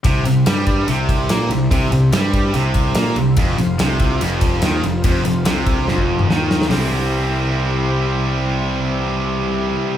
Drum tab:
RD |x-x-x-x-x-x-x-x-|x-x-x-x-x-x-x-x-|x-x-x-x-x-x-x-x-|x-x-x-x---------|
HH |----------------|----------------|----------------|----------------|
SD |----o-------o---|----o-------o---|----o-------o---|----o---o---o-oo|
T2 |----------------|----------------|----------------|-----------o----|
BD |o-----o---o-----|o-----o---o-----|o-----o---o-----|o-----o--o------|

RD |----------------|----------------|
HH |o---------------|----------------|
SD |o---------------|----------------|
T2 |----------------|----------------|
BD |----------------|----------------|